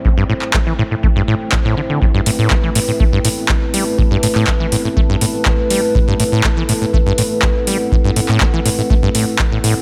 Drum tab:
HH |----------------|--o---o---o---o-|--o---o---o---o-|--o---o---o---o-|
CP |---xx-------x---|----x-------x---|---xx-------x---|----x-------x---|
BD |o---o---o---o---|o---o---o---o---|o---o---o---o---|o---o---o---o---|

HH |--o---o---o---o-|
CP |---xx-------x---|
BD |o---o---o---o---|